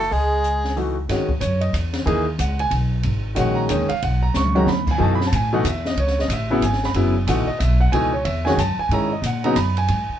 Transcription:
Already playing: tenor saxophone A3, soprano saxophone A4
0.00 open hi-hat
0.11 upright bass C#2, tenor saxophone G#3, soprano saxophone G#4, open hi-hat
0.44 closed hi-hat
0.64 snare
0.77 grand piano E3 A3 D#4 F#4, open hi-hat
1.09 upright bass G#2, grand piano D#3 G#3 C#4 F#4, snare, ride
1.29 kick
1.40 upright bass F#2, grand piano C#5, hi-hat pedal, ride
1.61 grand piano D#5, ride
1.73 upright bass E2, hi-hat pedal, ride
1.93 snare, ride
2.06 upright bass D#2, grand piano E3 A#3 D#4 G#4, ride
2.39 upright bass C#2, grand piano F#5, hi-hat pedal, ride
2.59 grand piano G#5, ride
2.71 upright bass B1, ride
3.03 upright bass G#1, ride
3.35 upright bass A#1, grand piano D#3 G#3 C#4 F#4, hi-hat pedal, ride
3.39 grand piano F#5
3.55 grand piano A#5
3.69 upright bass D#2, grand piano D#3 G#3 C#4 D#4, hi-hat pedal, ride
3.89 grand piano F5, muted upright bass stroke, ride
4.02 upright bass B1, grand piano F#5, ride
4.23 grand piano A#5
4.34 upright bass C#2, grand piano C#6, snare, hi-hat pedal
4.45 high tom
4.55 grand piano D#3 G#3 C#4 F#4 A#5, high tom
4.67 upright bass D#2, grand piano B5, snare
4.87 grand piano G#5, kick, crash
4.98 upright bass F#2, grand piano B2 E3 A3 D#4
5.02 grand piano A5
5.15 grand piano B5
5.21 snare
5.27 grand piano A5
5.32 upright bass A2, grand piano G#5, hi-hat pedal, ride
5.53 grand piano B2 E3 A3 D#4 F#5
5.64 upright bass E2, grand piano E5, hi-hat pedal, ride
5.85 grand piano D#5, snare
5.96 upright bass C#2, grand piano C#5, ride
6.07 snare
6.19 grand piano D#5, snare
6.28 upright bass A1, hi-hat pedal, ride
6.33 grand piano E5
6.50 grand piano C#3 F#3 B3 E4 F#5
6.61 upright bass G#1, grand piano G#5, hi-hat pedal, ride
6.73 snare
6.83 grand piano B5, snare
6.94 upright bass F#1, grand piano C#3 F#3 B3 E4, ride
7.27 upright bass A1, grand piano B2 E3 A3 D#4 F#5, hi-hat pedal, ride
7.47 grand piano D#5, muted upright bass stroke
7.59 upright bass B1, grand piano E5, hi-hat pedal, ride
7.80 grand piano F#5
7.92 upright bass C#2, grand piano B2 E3 A3 D#4 G#5, ride
8.13 grand piano C#5
8.25 upright bass E2, grand piano E5, ride
8.45 grand piano D#3 G#3 C#4 F#4 G#5, snare
8.54 upright bass F#2, grand piano G#5
8.58 grand piano A5, hi-hat pedal, ride
8.78 grand piano G#5, muted upright bass stroke
8.89 upright bass G#2, grand piano D#3 G#3 C#4 E4 A#5, ride
9.08 grand piano D5
9.13 grand piano D#5
9.22 upright bass A#2, grand piano F#5, hi-hat pedal, ride
9.44 grand piano C#3 F#3 B3 D#4 A#5, ride
9.56 upright bass F#2, grand piano B5, hi-hat pedal, ride
9.77 grand piano G#5, ride
9.88 upright bass G#2, ride
10.09 muted upright bass stroke

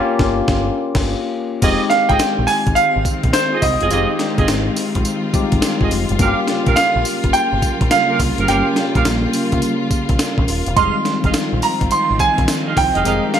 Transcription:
Already playing: tine electric piano A#3 C#4 F4 G4, grand piano F5
0.19 picked electric bass G1, kick, snare
0.48 picked electric bass G1, kick, snare
0.95 picked electric bass G1, kick, snare, crash
1.62 picked electric bass F1, string section D#3 G#3 C4 F4, tine electric piano G#3 C4 D#4 G4, horn section F4 G#4 D#5, kick, closed hi-hat, crash, tambourine
1.90 grand piano F5, snare, closed hi-hat
2.09 picked electric bass G#1, horn section F4 G#4 D#5, grand piano G5, kick, closed hi-hat
2.19 muted picked electric bass stroke, snare, closed hi-hat, tambourine
2.39 picked electric bass A#1
2.47 grand piano G#5, open hi-hat, tambourine
2.67 picked electric bass G#1, kick, closed hi-hat
2.75 grand piano F5, closed hi-hat, tambourine
2.96 picked electric bass G#1
3.05 kick, closed hi-hat, tambourine
3.23 picked electric bass A#1, kick, closed hi-hat
3.33 grand piano C5, snare, closed hi-hat, tambourine
3.52 horn section F4 G#4 D#5
3.62 picked electric bass C2, grand piano D#5, kick, open hi-hat, tambourine
3.80 picked electric bass E1, horn section F4 G#4 D#5, closed hi-hat
3.91 picked electric bass F1, tine electric piano G#3 C4 D#4 G4, horn section F4 G#4 D#5, closed hi-hat, tambourine
4.19 snare, closed hi-hat
4.38 picked electric bass G#1, horn section F4 G#4 D#5, kick, closed hi-hat
4.48 picked electric bass G#1, snare, closed hi-hat, tambourine
4.76 open hi-hat, tambourine
4.95 picked electric bass A#1, kick, closed hi-hat
5.05 closed hi-hat, tambourine
5.34 tine electric piano G3 C4 D#4 G4, muted picked electric bass stroke, kick, closed hi-hat, tambourine
5.40 tine electric piano G#3
5.52 picked electric bass G#1, kick, closed hi-hat
5.62 snare, closed hi-hat, tambourine
5.81 picked electric bass G#1, horn section F4 G#4 D#5, kick
5.91 picked electric bass F1, open hi-hat, tambourine
6.09 picked electric bass F#1, closed hi-hat
6.19 picked electric bass G1, string section C#3 G3 A#3, tine electric piano A#3 C#4 F4 F#4, horn section G4 A#4 F5, kick, closed hi-hat, tambourine
6.27 tine electric piano G4
6.48 snare, closed hi-hat
6.66 picked electric bass A#1, horn section G4 A#4 F5, kick, closed hi-hat
6.76 grand piano F5, snare, closed hi-hat, tambourine
6.96 picked electric bass A#1
7.05 open hi-hat, tambourine
7.24 picked electric bass G1, kick, closed hi-hat
7.33 grand piano G5, closed hi-hat, tambourine
7.53 picked electric bass G1
7.62 kick, closed hi-hat, tambourine
7.81 picked electric bass A#1, kick, closed hi-hat
7.91 grand piano F5, snare, closed hi-hat, tambourine
8.09 horn section G4 A#4 F5
8.19 picked electric bass C2, kick, open hi-hat, tambourine
8.38 picked electric bass F#1, horn section G4 A#4 F5, closed hi-hat
8.48 picked electric bass G1, tine electric piano A#3 C#4 F4 G4, horn section G4 A#4 F5, grand piano G5, closed hi-hat, tambourine
8.76 snare, closed hi-hat
8.95 picked electric bass A#1, horn section G4 A#4 F5, kick, closed hi-hat
9.05 picked electric bass A#1, snare, closed hi-hat, tambourine
9.33 open hi-hat, tambourine
9.52 picked electric bass C2, kick, closed hi-hat
9.62 closed hi-hat, tambourine
9.91 muted picked electric bass stroke, kick, closed hi-hat, tambourine
10.09 picked electric bass A#1, kick, closed hi-hat
10.19 snare, closed hi-hat, tambourine
10.38 picked electric bass A#1, kick
10.48 picked electric bass D#1, open hi-hat, tambourine
10.66 picked electric bass E1, closed hi-hat
10.75 picked electric bass F1, string section D#3 F3 C4, tine electric piano G3 G#3 C4 D#4, horn section G#4 D#5 F5, grand piano C6, kick, closed hi-hat, tambourine
11.05 snare, closed hi-hat
11.24 picked electric bass G#1, horn section G#4 D#5 F5, kick, closed hi-hat
11.34 muted picked electric bass stroke, snare, closed hi-hat, tambourine
11.53 picked electric bass A#1
11.62 grand piano A#5, open hi-hat, tambourine
11.81 picked electric bass G#1, kick, closed hi-hat
11.91 grand piano C6, closed hi-hat, tambourine
12.11 picked electric bass G#1
12.19 grand piano G#5, kick, closed hi-hat, tambourine
12.38 picked electric bass A#1, kick, closed hi-hat
12.48 snare, closed hi-hat, tambourine
12.67 horn section G#4 D#5 F5
12.77 picked electric bass C2, grand piano G5, kick, open hi-hat, tambourine
12.95 picked electric bass E1, horn section G#4 D#5 F5, closed hi-hat
13.04 picked electric bass F1, tine electric piano G#3 C4 D#4 A#4, string section G4, horn section G#4 D#5 F5, closed hi-hat, tambourine
13.34 grand piano F5, snare, closed hi-hat

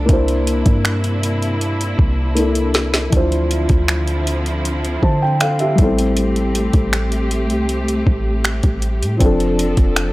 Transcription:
Already playing: felt piano A3 D4 B4 C5, string section D4
0.06 808-style bass C2, string section C3 A#3 E4, felt piano A#3 D4, kick, closed hi-hat
0.11 felt piano E4 C5
0.28 closed hi-hat
0.47 closed hi-hat
0.66 808-style bass G2, kick, closed hi-hat
0.85 finger snap, closed hi-hat
1.04 closed hi-hat
1.23 closed hi-hat
1.42 closed hi-hat
1.61 closed hi-hat
1.81 closed hi-hat
1.99 808-style bass C2, kick
2.35 felt piano A#3 D4 E4 A4, closed hi-hat
2.55 closed hi-hat
2.74 snare, closed hi-hat
2.94 snare, closed hi-hat
3.10 808-style bass D2, string section D3 F3 C4 E4, felt piano E3 D4, kick, closed hi-hat
3.15 felt piano F3 E4 C5
3.32 closed hi-hat
3.51 closed hi-hat
3.69 808-style bass D2, kick, closed hi-hat
3.88 finger snap, closed hi-hat
4.07 closed hi-hat
4.27 closed hi-hat
4.46 closed hi-hat
4.65 closed hi-hat
4.85 closed hi-hat
5.03 808-style bass D3, felt piano C5 A5, kick
5.22 felt piano G5
5.40 felt piano A4 F5, finger snap, closed hi-hat
5.59 felt piano G4 E5, closed hi-hat
5.76 808-style bass A1, felt piano G3 B3, string section A3 G4, kick, closed hi-hat
5.80 felt piano E4 A4
5.84 felt piano C4
5.99 closed hi-hat
6.17 closed hi-hat
6.36 closed hi-hat
6.55 closed hi-hat
6.73 808-style bass A1, kick, closed hi-hat
6.93 finger snap, closed hi-hat
7.12 closed hi-hat
7.31 closed hi-hat
7.50 808-style bass C2, closed hi-hat
7.69 closed hi-hat
7.88 closed hi-hat
8.07 808-style bass A1, kick
8.44 finger snap, closed hi-hat
8.63 808-style bass A1, kick, closed hi-hat
8.82 closed hi-hat
9.02 808-style bass A2, closed hi-hat
9.17 808-style bass F1, felt piano F3 C4, string section F3 D4 A4, kick, closed hi-hat
9.22 felt piano D4 A4
9.40 closed hi-hat
9.59 closed hi-hat
9.77 808-style bass F1, kick, closed hi-hat
9.96 finger snap, closed hi-hat

